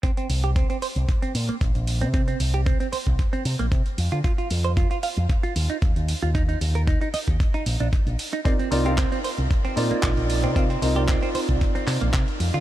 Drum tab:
HH |xxoxxxoxxxoxxxox|xxoxxxoxxxoxxxox|xxoxxxoxxxo-xxox|xxoxxxoxxxoxxxox|
CP |----------------|----------------|----------------|----------------|
BD |o---o---o---o---|o---o--oo---o---|o---o---o---o---|o---o--oo---o---|

HH |xxoxxxoxxxoxxxox|xxoxxxoxxxoxxxox|
CP |----x-------x---|----x-----x-x---|
BD |o---o---o---o---|o---o--oo---o---|